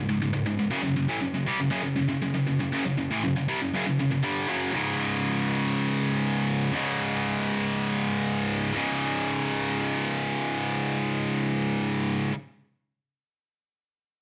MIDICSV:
0, 0, Header, 1, 2, 480
1, 0, Start_track
1, 0, Tempo, 502513
1, 687, Time_signature, 4, 2, 24, 8
1, 13576, End_track
2, 0, Start_track
2, 0, Title_t, "Distorted electric guitar"
2, 0, Program_c, 0, 30
2, 81, Note_on_c, 0, 37, 69
2, 85, Note_on_c, 0, 44, 76
2, 194, Note_off_c, 0, 37, 0
2, 196, Note_off_c, 0, 44, 0
2, 206, Note_on_c, 0, 37, 76
2, 208, Note_on_c, 0, 44, 77
2, 303, Note_off_c, 0, 37, 0
2, 306, Note_off_c, 0, 44, 0
2, 315, Note_on_c, 0, 37, 75
2, 317, Note_on_c, 0, 44, 69
2, 426, Note_off_c, 0, 37, 0
2, 429, Note_off_c, 0, 44, 0
2, 437, Note_on_c, 0, 37, 63
2, 441, Note_on_c, 0, 44, 77
2, 550, Note_off_c, 0, 37, 0
2, 554, Note_off_c, 0, 44, 0
2, 561, Note_on_c, 0, 37, 67
2, 566, Note_on_c, 0, 44, 69
2, 670, Note_off_c, 0, 37, 0
2, 674, Note_on_c, 0, 42, 87
2, 677, Note_off_c, 0, 44, 0
2, 681, Note_on_c, 0, 49, 116
2, 780, Note_off_c, 0, 42, 0
2, 784, Note_off_c, 0, 49, 0
2, 792, Note_on_c, 0, 42, 70
2, 796, Note_on_c, 0, 49, 76
2, 906, Note_off_c, 0, 42, 0
2, 910, Note_off_c, 0, 49, 0
2, 918, Note_on_c, 0, 42, 66
2, 921, Note_on_c, 0, 49, 65
2, 1030, Note_off_c, 0, 42, 0
2, 1033, Note_on_c, 0, 45, 87
2, 1034, Note_off_c, 0, 49, 0
2, 1038, Note_on_c, 0, 52, 101
2, 1150, Note_off_c, 0, 45, 0
2, 1154, Note_off_c, 0, 52, 0
2, 1154, Note_on_c, 0, 42, 67
2, 1159, Note_on_c, 0, 49, 69
2, 1266, Note_off_c, 0, 42, 0
2, 1270, Note_off_c, 0, 49, 0
2, 1277, Note_on_c, 0, 42, 70
2, 1281, Note_on_c, 0, 49, 77
2, 1394, Note_off_c, 0, 49, 0
2, 1398, Note_on_c, 0, 48, 84
2, 1401, Note_off_c, 0, 42, 0
2, 1407, Note_on_c, 0, 55, 97
2, 1511, Note_on_c, 0, 42, 69
2, 1513, Note_off_c, 0, 48, 0
2, 1518, Note_off_c, 0, 55, 0
2, 1520, Note_on_c, 0, 49, 74
2, 1612, Note_off_c, 0, 42, 0
2, 1623, Note_off_c, 0, 49, 0
2, 1624, Note_on_c, 0, 42, 92
2, 1635, Note_on_c, 0, 49, 103
2, 1735, Note_off_c, 0, 42, 0
2, 1738, Note_off_c, 0, 49, 0
2, 1747, Note_on_c, 0, 42, 67
2, 1749, Note_on_c, 0, 49, 71
2, 1859, Note_off_c, 0, 42, 0
2, 1862, Note_off_c, 0, 49, 0
2, 1870, Note_on_c, 0, 42, 59
2, 1874, Note_on_c, 0, 49, 79
2, 1979, Note_off_c, 0, 42, 0
2, 1982, Note_off_c, 0, 49, 0
2, 1990, Note_on_c, 0, 42, 66
2, 1994, Note_on_c, 0, 49, 74
2, 2108, Note_off_c, 0, 42, 0
2, 2111, Note_off_c, 0, 49, 0
2, 2120, Note_on_c, 0, 42, 69
2, 2122, Note_on_c, 0, 49, 72
2, 2228, Note_off_c, 0, 42, 0
2, 2229, Note_off_c, 0, 49, 0
2, 2239, Note_on_c, 0, 42, 80
2, 2240, Note_on_c, 0, 49, 84
2, 2351, Note_off_c, 0, 42, 0
2, 2354, Note_off_c, 0, 49, 0
2, 2362, Note_on_c, 0, 42, 69
2, 2365, Note_on_c, 0, 49, 72
2, 2473, Note_off_c, 0, 42, 0
2, 2476, Note_off_c, 0, 49, 0
2, 2485, Note_on_c, 0, 42, 69
2, 2488, Note_on_c, 0, 49, 71
2, 2595, Note_off_c, 0, 42, 0
2, 2604, Note_off_c, 0, 49, 0
2, 2606, Note_on_c, 0, 42, 110
2, 2615, Note_on_c, 0, 49, 114
2, 2716, Note_off_c, 0, 42, 0
2, 2721, Note_off_c, 0, 49, 0
2, 2729, Note_on_c, 0, 42, 62
2, 2733, Note_on_c, 0, 49, 71
2, 2832, Note_off_c, 0, 42, 0
2, 2838, Note_off_c, 0, 49, 0
2, 2844, Note_on_c, 0, 42, 71
2, 2850, Note_on_c, 0, 49, 71
2, 2961, Note_off_c, 0, 42, 0
2, 2965, Note_off_c, 0, 49, 0
2, 2968, Note_on_c, 0, 45, 86
2, 2978, Note_on_c, 0, 52, 94
2, 3076, Note_off_c, 0, 45, 0
2, 3081, Note_off_c, 0, 52, 0
2, 3093, Note_on_c, 0, 49, 69
2, 3096, Note_on_c, 0, 42, 67
2, 3198, Note_off_c, 0, 42, 0
2, 3204, Note_off_c, 0, 49, 0
2, 3209, Note_on_c, 0, 42, 64
2, 3215, Note_on_c, 0, 49, 73
2, 3324, Note_off_c, 0, 42, 0
2, 3324, Note_off_c, 0, 49, 0
2, 3327, Note_on_c, 0, 48, 97
2, 3338, Note_on_c, 0, 55, 101
2, 3435, Note_off_c, 0, 48, 0
2, 3441, Note_off_c, 0, 55, 0
2, 3449, Note_on_c, 0, 42, 64
2, 3455, Note_on_c, 0, 49, 81
2, 3557, Note_off_c, 0, 42, 0
2, 3566, Note_off_c, 0, 49, 0
2, 3569, Note_on_c, 0, 42, 88
2, 3580, Note_on_c, 0, 49, 92
2, 3676, Note_off_c, 0, 42, 0
2, 3682, Note_off_c, 0, 49, 0
2, 3691, Note_on_c, 0, 42, 69
2, 3697, Note_on_c, 0, 49, 77
2, 3801, Note_off_c, 0, 42, 0
2, 3804, Note_off_c, 0, 49, 0
2, 3812, Note_on_c, 0, 42, 72
2, 3815, Note_on_c, 0, 49, 77
2, 3911, Note_off_c, 0, 42, 0
2, 3915, Note_off_c, 0, 49, 0
2, 3922, Note_on_c, 0, 42, 62
2, 3927, Note_on_c, 0, 49, 68
2, 4033, Note_off_c, 0, 42, 0
2, 4037, Note_on_c, 0, 43, 99
2, 4040, Note_off_c, 0, 49, 0
2, 4044, Note_on_c, 0, 50, 99
2, 4049, Note_on_c, 0, 55, 115
2, 4269, Note_off_c, 0, 43, 0
2, 4273, Note_off_c, 0, 50, 0
2, 4276, Note_off_c, 0, 55, 0
2, 4276, Note_on_c, 0, 42, 90
2, 4282, Note_on_c, 0, 49, 93
2, 4289, Note_on_c, 0, 54, 101
2, 4502, Note_off_c, 0, 42, 0
2, 4506, Note_on_c, 0, 37, 89
2, 4512, Note_off_c, 0, 49, 0
2, 4515, Note_off_c, 0, 54, 0
2, 4527, Note_on_c, 0, 44, 100
2, 4539, Note_on_c, 0, 49, 88
2, 6423, Note_off_c, 0, 37, 0
2, 6426, Note_off_c, 0, 44, 0
2, 6426, Note_on_c, 0, 37, 92
2, 6447, Note_on_c, 0, 44, 90
2, 6459, Note_off_c, 0, 49, 0
2, 6462, Note_on_c, 0, 49, 98
2, 8332, Note_off_c, 0, 37, 0
2, 8344, Note_on_c, 0, 37, 84
2, 8350, Note_off_c, 0, 44, 0
2, 8357, Note_off_c, 0, 49, 0
2, 8365, Note_on_c, 0, 44, 102
2, 8385, Note_on_c, 0, 49, 103
2, 11747, Note_off_c, 0, 37, 0
2, 11768, Note_off_c, 0, 44, 0
2, 11788, Note_off_c, 0, 49, 0
2, 13576, End_track
0, 0, End_of_file